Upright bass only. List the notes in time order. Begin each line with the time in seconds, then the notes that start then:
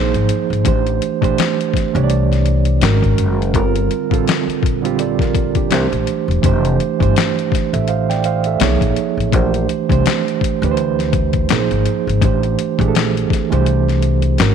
Already playing: A#1
0.14 G#1
0.50 G#1
0.65 A1
1.23 A#1
1.74 muted upright bass stroke
1.95 C2
2.82 G#1
3.19 F#1
3.54 G1
4.12 A1
4.47 muted upright bass stroke
4.63 A#1
5.72 C2
5.92 A#1
6.28 E1
6.44 F1
7.01 G1
7.52 muted upright bass stroke
7.73 A1
8.61 B1
8.82 A#1
9.17 A1
9.33 A#1
9.90 C2
10.42 muted upright bass stroke
10.62 D2
11.50 A#1
11.71 G#1
12.07 G#1
12.22 A1
12.79 A#1
13.31 muted upright bass stroke
13.52 C2
14.40 G#1